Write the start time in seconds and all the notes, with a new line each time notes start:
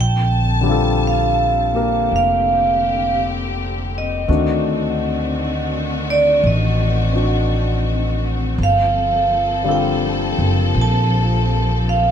Already playing: A#1 D3 C4 A5
0.01 G5
0.61 D3 G3
0.66 C4 F4
0.71 A4
1.07 F5
1.74 A#3 G4 A#4
2.11 F1 G4
2.16 F5
3.98 D#5
4.28 D2 D#3 A3 C4 D4 F#4
6.10 D5
6.44 A1 D#5
7.12 C4 D4 F#4
8.58 G1 F3 A#3 A4
8.63 F5
9.64 D3 G3 C4
9.68 F4 A4 G5
10.39 F#1
10.75 A#1
10.81 A5
11.89 F5